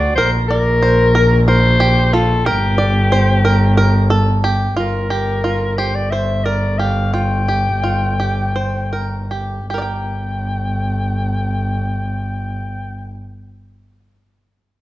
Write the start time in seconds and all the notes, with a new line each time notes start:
Already playing: D2 F#4 D5
0.15 A#1 A#4 C5
0.48 A#4 D5
0.82 C5
1.15 A#4
1.48 A#4 C5
1.80 G4
2.13 F4 A4
2.45 G1 G4 A#4
2.78 D5
3.12 C5
3.45 A#4
3.77 A#4
4.10 A4
4.44 G4
4.76 G1 F4 A#4
5.10 G4
5.44 F4
5.78 G4 C5
5.95 D5
6.11 C5 E5
6.45 A#4 D5
6.78 G4 F5
7.13 F4 G5
7.48 G4
7.83 F4
8.20 G4
8.56 C5
8.93 A#4
9.31 G4
9.68 G1 G4 G5
9.74 A#4 D5
9.82 G5